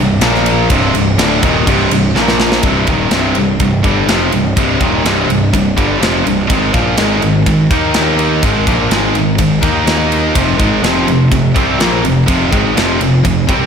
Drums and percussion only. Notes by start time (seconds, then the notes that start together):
0.21 snare, ride
0.35 snare
0.46 ride
0.70 kick, ride
0.95 ride
1.19 snare, ride
1.43 kick, ride
1.67 kick, ride
1.91 ride
2.16 snare
2.28 snare
2.40 snare
2.52 snare
2.63 kick, ride
2.87 kick, ride
3.11 snare, ride
3.35 ride
3.60 kick, ride
3.84 kick, ride
4.09 snare, ride
4.32 ride
4.57 kick, ride
4.81 kick, ride
5.06 snare, ride
5.30 ride
5.54 kick, ride
5.78 kick, ride
6.03 snare, ride
6.27 ride
6.50 kick, ride
6.74 kick, ride
6.97 snare, ride
7.22 ride
7.46 kick, ride
7.71 kick, ride
7.94 snare, ride
8.19 ride
8.43 kick, ride
8.67 kick, ride
8.91 snare, ride
9.15 ride
9.38 kick, ride
9.63 kick, ride
9.87 snare, ride
10.12 ride
10.35 kick, ride
10.60 kick, ride
10.84 snare, ride
11.08 ride
11.32 kick, ride
11.56 kick, ride
11.80 snare, ride
12.05 ride
12.28 kick, ride
12.53 kick, ride
12.77 snare, ride
13.01 ride
13.25 kick, ride
13.49 kick, ride